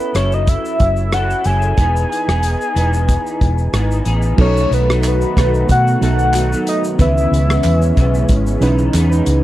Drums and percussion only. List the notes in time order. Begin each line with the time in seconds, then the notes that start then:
0.00 shaker
0.15 cross-stick, closed hi-hat, shaker
0.32 shaker
0.47 kick, closed hi-hat, shaker
0.65 shaker
0.80 kick, closed hi-hat, shaker
0.96 shaker
1.12 cross-stick, closed hi-hat, shaker
1.30 shaker
1.44 closed hi-hat, shaker
1.62 shaker
1.78 kick, closed hi-hat, shaker
1.96 shaker
2.12 closed hi-hat, shaker
2.29 cross-stick, shaker
2.43 closed hi-hat, shaker
2.61 shaker
2.76 closed hi-hat, shaker
2.93 shaker
3.09 kick, closed hi-hat, shaker
3.27 shaker
3.41 kick, closed hi-hat, shaker
3.58 shaker
3.74 cross-stick, closed hi-hat, shaker
3.91 shaker
4.05 closed hi-hat, shaker
4.22 shaker
4.38 kick, crash
4.57 shaker
4.72 closed hi-hat, shaker
4.90 cross-stick, shaker
5.03 clap, closed hi-hat, shaker
5.21 shaker
5.37 kick, cross-stick, closed hi-hat, shaker
5.54 shaker
5.69 kick, closed hi-hat, shaker
5.87 shaker
6.02 closed hi-hat, shaker
6.19 shaker
6.33 clap, closed hi-hat, shaker
6.53 shaker
6.67 closed hi-hat, shaker
6.84 shaker
6.99 kick, closed hi-hat, shaker
7.18 shaker
7.34 closed hi-hat, shaker
7.50 cross-stick, shaker
7.63 clap, closed hi-hat, shaker
7.82 shaker
7.97 kick, closed hi-hat, shaker
8.14 shaker
8.29 kick, closed hi-hat, shaker
8.47 shaker
8.62 closed hi-hat, shaker
8.79 shaker
8.94 clap, closed hi-hat, shaker
9.12 shaker
9.26 closed hi-hat, shaker